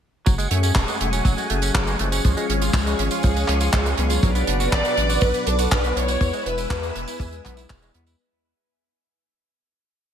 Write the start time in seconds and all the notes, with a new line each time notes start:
0.26 F#1 F#3 F#5 G#5 C#6, kick, closed hi-hat, tambourine
0.38 G#3, closed hi-hat, tambourine
0.51 F#2 F#3 A3 C#4 G#4, closed hi-hat
0.63 C#4, closed hi-hat, tambourine
0.75 E1 F#3, kick, clap, closed hi-hat, tambourine
0.88 G#3, closed hi-hat, tambourine
1.00 E1 F#3 A3 C#4 G#4, closed hi-hat
1.13 C#4, closed hi-hat, tambourine
1.25 F#1 F#3, kick, closed hi-hat, tambourine
1.38 G#3, closed hi-hat, tambourine
1.50 F#1 F#3 A3 C#4 G#4, closed hi-hat
1.62 C#4, closed hi-hat, tambourine
1.75 F#1 F#3, kick, clap, closed hi-hat
1.87 G#3, closed hi-hat, tambourine
1.99 F#1 F3 G#3 A3 C#4 G#4, closed hi-hat
2.12 C#4, closed hi-hat, tambourine
2.24 C#2 F3 G#4 C#5 F5, kick, closed hi-hat, tambourine
2.37 G#3, closed hi-hat, tambourine
2.49 G#1 F3 G#3 C#4 G#4, closed hi-hat
2.62 F4, closed hi-hat, tambourine
2.73 C#2 F3, kick, clap, closed hi-hat, tambourine
2.86 G#3, closed hi-hat, tambourine
2.99 G#1 F3 G#3 C#4 G#4, closed hi-hat
3.11 F4, closed hi-hat, tambourine
3.23 C#2 F3, kick, closed hi-hat, tambourine
3.36 G#3, closed hi-hat, tambourine
3.48 C#2 F3 G#3 C#4 G#4, clap, closed hi-hat
3.60 F4, closed hi-hat, tambourine
3.73 C#2 F3, kick, clap, closed hi-hat
3.86 G#3, closed hi-hat, tambourine
3.98 C#2 B2 F#3 B3 C#4 D4 B4, closed hi-hat
4.10 F4, closed hi-hat, tambourine
4.23 B1 F#3 B4 D5 F#5 D6, kick, closed hi-hat, tambourine
4.35 B3, closed hi-hat, tambourine
4.47 F#1 B2 F#3 B3 D4 B4, closed hi-hat
4.60 F#4, closed hi-hat, tambourine
4.72 A1 F#3 D5, kick, clap, closed hi-hat
4.85 B3, closed hi-hat, tambourine
4.97 A1 B2 F#3 B3 D4 B4, closed hi-hat
5.09 F#4, closed hi-hat, tambourine
5.21 B1 F#3 B4, kick, closed hi-hat, tambourine
5.34 B3, closed hi-hat, tambourine
5.47 B1 B2 F#3 B3 D4 A4 B4, closed hi-hat
5.59 F#4 A4, closed hi-hat, tambourine
5.71 B1 F#3 B4, kick, clap, closed hi-hat
5.84 B3, closed hi-hat, tambourine
5.96 B1 G#3 B3 D4 E4 B4 C#5, closed hi-hat
6.08 F#4, closed hi-hat, tambourine
6.21 E2 E3 B4 E5 G#5 E6, kick, closed hi-hat, tambourine
6.33 G#3, closed hi-hat, tambourine
6.46 E1 G#3 B3 E4 B4, closed hi-hat
6.58 E4, closed hi-hat, tambourine
6.70 E2 E3, kick, clap, closed hi-hat, tambourine
6.83 G#3, closed hi-hat, tambourine
6.95 E1 G#3 B3 E4 B4, closed hi-hat
7.08 E4, closed hi-hat, tambourine
7.20 E2 E3, kick, closed hi-hat, tambourine
7.32 G#3, closed hi-hat, tambourine
7.45 B1 G#3 B3 E4 B4, kick, clap, closed hi-hat
7.57 E4, closed hi-hat, tambourine
7.70 E1 E3, kick, clap, closed hi-hat
7.82 G#3, closed hi-hat, tambourine
7.94 E2 G#3 B3 E4 B4, closed hi-hat
8.06 E4, closed hi-hat, tambourine